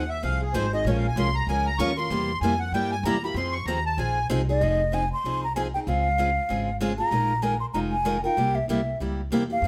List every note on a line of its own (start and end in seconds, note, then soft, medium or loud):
0.00 0.22 D#2 medium
0.09 0.22 E5 medium
0.23 0.53 C2 medium
0.23 0.42 F3 medium
0.23 0.43 C4 medium
0.23 0.43 D#4 medium
0.23 0.43 G#4 medium
0.23 0.41 F5 loud
0.42 0.54 G#4 medium
0.53 0.84 G#1 loud
0.53 0.65 F3 loud
0.53 0.65 C4 loud
0.53 0.65 D#4 loud
0.53 0.66 G#4 loud
0.53 0.72 C5 loud
0.73 0.86 C4 soft
0.73 0.86 D#4 soft
0.73 0.86 G#4 medium
0.73 0.86 D#5 loud
0.84 1.16 A#1 loud
0.84 1.06 F3 medium
0.84 1.06 G#3 medium
0.84 1.06 C#4 medium
0.84 1.06 F4 medium
0.84 1.06 A#4 medium
0.84 0.97 C#5 medium
0.97 1.07 F5 medium
1.08 1.17 G#5 medium
1.16 1.46 C2 medium
1.16 1.28 F3 medium
1.16 1.28 G#3 medium
1.16 1.28 C#4 medium
1.16 1.28 F4 loud
1.16 1.28 A#4 medium
1.16 1.35 C6 loud
1.35 1.48 A#5 loud
1.47 1.78 C#2 medium
1.47 1.68 F3 medium
1.47 1.68 G#3 medium
1.47 1.68 C#4 medium
1.47 1.68 F4 medium
1.47 1.69 A#4 medium
1.47 1.66 G#5 loud
1.66 1.79 A#5 loud
1.78 2.09 D#2 loud
1.78 1.90 F3 loud
1.78 1.90 G#3 medium
1.78 1.91 C#4 loud
1.78 1.90 F4 loud
1.78 1.90 A#4 loud
1.78 1.97 C#6 loud
1.97 2.11 C#4 soft
1.97 2.11 F4 medium
1.97 2.10 A#4 medium
1.97 2.39 C6 loud
2.10 2.40 E2 loud
2.10 2.30 C3 medium
2.10 2.30 G3 medium
2.10 2.31 A#3 medium
2.10 2.31 E4 medium
2.10 2.31 G4 medium
2.41 2.71 F2 medium
2.41 2.53 C3 medium
2.41 2.53 G3 medium
2.41 2.53 A#3 medium
2.41 2.54 E4 medium
2.41 2.54 G4 medium
2.41 2.59 G#5 loud
2.60 2.73 F#5 medium
2.72 3.03 G2 medium
2.72 2.93 C3 medium
2.72 2.93 G3 medium
2.72 2.93 A#3 medium
2.72 2.93 E4 medium
2.72 2.94 G4 medium
2.72 2.91 G5 loud
2.91 3.04 G#5 loud
3.03 3.34 E2 medium
3.03 3.16 C3 medium
3.03 3.16 G3 loud
3.03 3.16 A#3 loud
3.03 3.16 E4 loud
3.03 3.16 G4 loud
3.03 3.23 A#5 medium
3.24 3.36 A#3 medium
3.24 3.36 E4 medium
3.24 3.36 G4 medium
3.24 3.36 B5 medium
3.34 3.65 F2 loud
3.34 3.55 F3 medium
3.34 3.56 C4 medium
3.34 3.56 D#4 medium
3.34 3.56 G#4 medium
3.34 3.54 C6 medium
3.52 3.66 C#6 loud
3.65 3.97 D#2 medium
3.65 3.78 F3 medium
3.65 3.78 C4 medium
3.65 3.78 D#4 medium
3.65 3.79 G#4 medium
3.65 3.84 A#5 loud
3.86 3.98 A5 medium
3.97 4.28 A#1 medium
3.97 4.18 F3 medium
3.97 4.18 C4 medium
3.97 4.18 D#4 medium
3.97 4.18 G#4 medium
3.97 4.27 G#5 medium
4.30 4.60 C2 loud
4.30 4.40 F3 loud
4.30 4.40 C4 loud
4.30 4.41 D#4 loud
4.30 4.41 G#4 loud
4.49 4.60 C4 soft
4.49 4.61 D#4 medium
4.49 4.61 G#4 medium
4.49 4.96 D#5 loud
4.61 5.11 F1 medium
4.61 4.81 F3 medium
4.61 4.81 C4 medium
4.61 4.81 D#4 medium
4.61 4.81 G#4 medium
4.92 5.03 F3 medium
4.92 5.03 C4 medium
4.92 5.03 D#4 medium
4.92 5.03 G#4 medium
4.92 5.12 G#5 medium
5.13 5.41 C6 medium
5.24 5.74 C2 medium
5.24 5.44 F3 medium
5.24 5.44 C4 medium
5.24 5.44 D#4 medium
5.24 5.44 G#4 medium
5.44 5.55 A#5 medium
5.56 5.66 F3 loud
5.56 5.66 C4 medium
5.56 5.67 D#4 medium
5.56 5.67 G#4 medium
5.56 5.62 G#5 loud
5.74 5.87 C4 soft
5.74 5.87 D#4 soft
5.74 5.87 G#4 soft
5.74 5.80 G5 medium
5.87 6.37 C#2 loud
5.87 6.06 C#3 medium
5.87 6.07 G#3 medium
5.87 6.07 C4 medium
5.87 6.07 F4 medium
5.87 6.07 G#4 medium
5.87 6.77 F5 loud
6.18 6.29 C#3 medium
6.18 6.29 G#3 medium
6.18 6.29 C4 medium
6.18 6.29 F4 medium
6.18 6.30 G#4 medium
6.49 7.00 G#1 medium
6.49 6.68 C#3 medium
6.49 6.69 G#3 medium
6.49 6.69 C4 medium
6.49 6.69 F4 medium
6.49 6.69 G#4 medium
6.81 6.91 C#3 medium
6.81 6.91 G#3 medium
6.81 6.92 C4 loud
6.81 6.92 F4 loud
6.81 6.92 G#4 medium
6.98 7.12 C4 soft
6.98 7.12 F4 soft
6.98 7.11 G#4 soft
6.98 7.44 A#5 loud
7.11 7.62 A#1 medium
7.11 7.31 D#3 medium
7.11 7.31 G#3 medium
7.11 7.32 D#4 medium
7.11 7.32 F4 medium
7.11 7.32 A#4 medium
7.42 7.53 D#3 medium
7.42 7.53 G#3 medium
7.42 7.54 D#4 medium
7.42 7.54 F4 medium
7.42 7.54 A#4 medium
7.42 7.60 G#5 medium
7.60 7.66 C6 medium
7.74 8.25 F1 medium
7.74 7.94 D#3 medium
7.74 7.94 G#3 medium
7.74 7.94 D#4 medium
7.74 7.94 F4 medium
7.74 7.95 A#4 medium
7.74 7.80 A#5 medium
7.92 8.22 G#5 medium
8.05 8.16 D#3 medium
8.05 8.16 G#3 medium
8.05 8.16 D#4 medium
8.05 8.16 F4 loud
8.05 8.17 A#4 loud
8.24 8.37 D#4 soft
8.24 8.37 F4 medium
8.24 8.37 A#4 medium
8.24 8.57 G5 medium
8.37 8.62 C2 medium
8.37 8.57 C3 medium
8.37 8.57 G3 medium
8.37 8.57 A#3 medium
8.37 8.57 E4 medium
8.37 8.57 G4 medium
8.55 8.69 E5 medium
8.68 8.95 C2 medium
8.68 8.79 C3 medium
8.68 8.80 G3 medium
8.68 8.80 A#3 medium
8.68 8.80 E4 medium
8.68 8.80 G4 medium
8.68 8.99 E5 medium
9.00 9.27 C#2 medium
9.00 9.20 C3 medium
9.00 9.20 G3 medium
9.00 9.20 A#3 medium
9.00 9.20 E4 medium
9.00 9.20 G4 medium
9.30 9.58 E2 medium
9.30 9.42 C3 medium
9.30 9.42 G3 medium
9.30 9.42 A#3 loud
9.30 9.43 E4 medium
9.30 9.43 G4 loud
9.50 9.64 A#3 soft
9.50 9.63 E4 soft
9.50 9.62 G4 soft
9.50 9.68 F5 medium
9.62 9.68 F2 medium
9.62 9.68 F3 medium